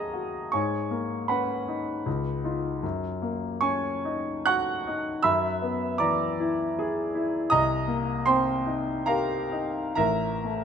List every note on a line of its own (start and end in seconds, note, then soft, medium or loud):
0.00 0.48 F#2 soft
0.00 0.55 A#3 soft
0.00 0.55 C#4 soft
0.00 0.13 F#4 soft
0.00 0.37 G#4 soft
0.00 0.54 A#4 soft
0.00 0.48 D#5 medium
0.00 0.54 F5 soft
0.00 0.54 A#5 medium
0.00 0.51 D#6 medium
0.13 0.53 F#4 soft
0.52 2.03 G#2 soft
0.52 1.26 C#5 soft
0.52 1.26 G#5 soft
0.52 1.29 C#6 medium
0.91 1.52 A#3 soft
1.28 1.92 C#4 soft
1.28 2.41 B4 soft
1.28 2.41 F#5 soft
1.28 2.44 B5 medium
1.68 2.07 D#4 soft
2.06 2.81 C#2 soft
2.44 2.79 D#4 soft
2.44 2.79 F4 soft
2.83 5.21 F#2 soft
3.22 3.87 A#3 soft
3.61 4.32 C#4 soft
3.61 4.45 C#5 soft
3.61 4.45 G#5 medium
3.61 4.45 C#6 medium
4.05 4.73 D#4 soft
4.46 5.09 F#4 soft
4.46 5.20 F#5 medium
4.46 5.20 C#6 medium
4.46 5.23 F#6 medium
4.87 5.24 D#4 soft
5.23 7.47 F#2 soft
5.23 5.96 E5 medium
5.23 5.96 B5 medium
5.23 5.99 E6 medium
5.62 6.23 B3 soft
5.98 6.63 E3 soft
5.98 7.11 D5 medium
5.98 7.11 A#5 soft
5.98 7.14 D6 medium
6.40 7.01 E4 soft
6.79 7.37 G#4 soft
7.15 7.51 E4 soft
7.50 9.94 C2 medium
7.50 8.23 D#5 medium
7.50 8.22 A#5 medium
7.50 8.26 D#6 medium
7.88 8.49 A#3 soft
8.26 8.91 C4 soft
8.26 9.04 C5 medium
8.26 9.04 G5 medium
8.26 9.07 C6 medium
8.66 9.34 D#4 soft
9.06 9.79 G4 soft
9.06 9.93 A#4 soft
9.06 9.93 F5 medium
9.06 9.94 A#5 medium
9.52 9.98 D#4 soft
9.95 10.64 A1 soft
9.95 10.64 A#4 medium
9.95 10.64 E5 medium
9.95 10.64 A#5 medium
10.44 10.64 A3 soft